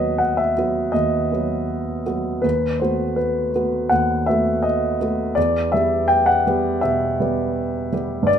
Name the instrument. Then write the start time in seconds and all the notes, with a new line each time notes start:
grand piano
Already playing: D#2 F#3 B3 F#4 B4 D#5
0.18 F#5
0.37 E5
0.57 F#3 B3 F#4
0.92 D#2 D#5
1.32 F#3 B3 F#4
2.06 F#3 B3 F#4
2.42 D#2 B4
2.79 A3 B3 F#4 C5
3.16 B4
3.55 A3 B3 F#4
3.89 D#2 F#5
4.26 A3 B3 F#4 E5
4.63 D#5
5.00 A3 B3 F#4
5.35 E2 D5
5.72 G3 B3 G4 E5
6.08 G5
6.26 F#5
6.47 G3 B3 G4
6.81 B2 E5
7.20 G3 B3 G4
7.92 G3 B3 G4
8.23 G2
8.27 D5